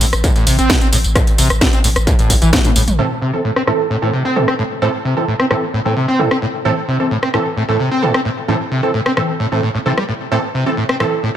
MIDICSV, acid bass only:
0, 0, Header, 1, 2, 480
1, 0, Start_track
1, 0, Key_signature, 0, "minor"
1, 0, Tempo, 458015
1, 1210, Time_signature, 4, 2, 24, 8
1, 11912, End_track
2, 0, Start_track
2, 0, Title_t, "Acid bass"
2, 0, Program_c, 0, 38
2, 10, Note_on_c, 0, 45, 80
2, 51, Note_off_c, 0, 45, 0
2, 250, Note_on_c, 0, 45, 101
2, 319, Note_off_c, 0, 45, 0
2, 374, Note_on_c, 0, 45, 78
2, 470, Note_off_c, 0, 45, 0
2, 490, Note_on_c, 0, 48, 78
2, 593, Note_off_c, 0, 48, 0
2, 615, Note_on_c, 0, 60, 103
2, 730, Note_on_c, 0, 45, 82
2, 746, Note_off_c, 0, 60, 0
2, 833, Note_off_c, 0, 45, 0
2, 854, Note_on_c, 0, 60, 78
2, 918, Note_off_c, 0, 60, 0
2, 970, Note_on_c, 0, 45, 99
2, 1011, Note_off_c, 0, 45, 0
2, 1210, Note_on_c, 0, 45, 102
2, 1278, Note_off_c, 0, 45, 0
2, 1450, Note_on_c, 0, 48, 76
2, 1553, Note_off_c, 0, 48, 0
2, 1690, Note_on_c, 0, 45, 84
2, 1759, Note_off_c, 0, 45, 0
2, 1814, Note_on_c, 0, 60, 79
2, 1878, Note_off_c, 0, 60, 0
2, 1930, Note_on_c, 0, 45, 80
2, 1971, Note_off_c, 0, 45, 0
2, 2170, Note_on_c, 0, 45, 99
2, 2239, Note_off_c, 0, 45, 0
2, 2294, Note_on_c, 0, 45, 80
2, 2410, Note_on_c, 0, 43, 79
2, 2426, Note_off_c, 0, 45, 0
2, 2451, Note_off_c, 0, 43, 0
2, 2534, Note_on_c, 0, 52, 80
2, 2630, Note_off_c, 0, 52, 0
2, 2650, Note_on_c, 0, 45, 82
2, 2718, Note_off_c, 0, 45, 0
2, 2774, Note_on_c, 0, 45, 74
2, 2838, Note_off_c, 0, 45, 0
2, 2890, Note_on_c, 0, 45, 75
2, 2959, Note_off_c, 0, 45, 0
2, 3130, Note_on_c, 0, 45, 98
2, 3198, Note_off_c, 0, 45, 0
2, 3370, Note_on_c, 0, 48, 76
2, 3473, Note_off_c, 0, 48, 0
2, 3610, Note_on_c, 0, 45, 83
2, 3678, Note_off_c, 0, 45, 0
2, 3734, Note_on_c, 0, 60, 74
2, 3798, Note_off_c, 0, 60, 0
2, 3850, Note_on_c, 0, 45, 75
2, 3891, Note_off_c, 0, 45, 0
2, 4090, Note_on_c, 0, 45, 97
2, 4158, Note_off_c, 0, 45, 0
2, 4214, Note_on_c, 0, 45, 75
2, 4310, Note_off_c, 0, 45, 0
2, 4330, Note_on_c, 0, 48, 75
2, 4432, Note_off_c, 0, 48, 0
2, 4454, Note_on_c, 0, 60, 101
2, 4570, Note_on_c, 0, 45, 78
2, 4586, Note_off_c, 0, 60, 0
2, 4673, Note_off_c, 0, 45, 0
2, 4695, Note_on_c, 0, 60, 74
2, 4758, Note_off_c, 0, 60, 0
2, 4810, Note_on_c, 0, 45, 99
2, 4851, Note_off_c, 0, 45, 0
2, 5050, Note_on_c, 0, 45, 98
2, 5119, Note_off_c, 0, 45, 0
2, 5290, Note_on_c, 0, 48, 75
2, 5393, Note_off_c, 0, 48, 0
2, 5530, Note_on_c, 0, 45, 84
2, 5598, Note_off_c, 0, 45, 0
2, 5654, Note_on_c, 0, 60, 76
2, 5718, Note_off_c, 0, 60, 0
2, 5771, Note_on_c, 0, 45, 75
2, 5811, Note_off_c, 0, 45, 0
2, 6011, Note_on_c, 0, 45, 94
2, 6079, Note_off_c, 0, 45, 0
2, 6135, Note_on_c, 0, 45, 77
2, 6230, Note_off_c, 0, 45, 0
2, 6250, Note_on_c, 0, 48, 77
2, 6353, Note_off_c, 0, 48, 0
2, 6375, Note_on_c, 0, 60, 101
2, 6490, Note_on_c, 0, 45, 81
2, 6506, Note_off_c, 0, 60, 0
2, 6593, Note_off_c, 0, 45, 0
2, 6614, Note_on_c, 0, 60, 72
2, 6678, Note_off_c, 0, 60, 0
2, 6730, Note_on_c, 0, 45, 95
2, 6771, Note_off_c, 0, 45, 0
2, 6970, Note_on_c, 0, 45, 98
2, 7039, Note_off_c, 0, 45, 0
2, 7211, Note_on_c, 0, 48, 74
2, 7313, Note_off_c, 0, 48, 0
2, 7451, Note_on_c, 0, 45, 83
2, 7519, Note_off_c, 0, 45, 0
2, 7575, Note_on_c, 0, 60, 75
2, 7638, Note_off_c, 0, 60, 0
2, 7691, Note_on_c, 0, 45, 77
2, 7731, Note_off_c, 0, 45, 0
2, 7930, Note_on_c, 0, 45, 96
2, 7998, Note_off_c, 0, 45, 0
2, 8054, Note_on_c, 0, 45, 78
2, 8150, Note_off_c, 0, 45, 0
2, 8170, Note_on_c, 0, 48, 76
2, 8272, Note_off_c, 0, 48, 0
2, 8294, Note_on_c, 0, 60, 99
2, 8409, Note_on_c, 0, 45, 79
2, 8425, Note_off_c, 0, 60, 0
2, 8512, Note_off_c, 0, 45, 0
2, 8534, Note_on_c, 0, 60, 76
2, 8598, Note_off_c, 0, 60, 0
2, 8649, Note_on_c, 0, 45, 96
2, 8691, Note_off_c, 0, 45, 0
2, 8890, Note_on_c, 0, 45, 98
2, 8958, Note_off_c, 0, 45, 0
2, 9130, Note_on_c, 0, 48, 73
2, 9232, Note_off_c, 0, 48, 0
2, 9370, Note_on_c, 0, 45, 84
2, 9438, Note_off_c, 0, 45, 0
2, 9494, Note_on_c, 0, 60, 75
2, 9558, Note_off_c, 0, 60, 0
2, 9610, Note_on_c, 0, 45, 76
2, 9651, Note_off_c, 0, 45, 0
2, 9850, Note_on_c, 0, 45, 97
2, 9918, Note_off_c, 0, 45, 0
2, 9975, Note_on_c, 0, 45, 76
2, 10070, Note_off_c, 0, 45, 0
2, 10090, Note_on_c, 0, 45, 77
2, 10159, Note_off_c, 0, 45, 0
2, 10214, Note_on_c, 0, 45, 76
2, 10252, Note_off_c, 0, 45, 0
2, 10330, Note_on_c, 0, 48, 83
2, 10399, Note_off_c, 0, 48, 0
2, 10454, Note_on_c, 0, 55, 74
2, 10518, Note_off_c, 0, 55, 0
2, 10570, Note_on_c, 0, 45, 74
2, 10611, Note_off_c, 0, 45, 0
2, 10810, Note_on_c, 0, 45, 100
2, 10878, Note_off_c, 0, 45, 0
2, 11050, Note_on_c, 0, 48, 72
2, 11153, Note_off_c, 0, 48, 0
2, 11290, Note_on_c, 0, 45, 83
2, 11359, Note_off_c, 0, 45, 0
2, 11415, Note_on_c, 0, 60, 75
2, 11478, Note_off_c, 0, 60, 0
2, 11530, Note_on_c, 0, 45, 76
2, 11571, Note_off_c, 0, 45, 0
2, 11770, Note_on_c, 0, 45, 99
2, 11839, Note_off_c, 0, 45, 0
2, 11912, End_track
0, 0, End_of_file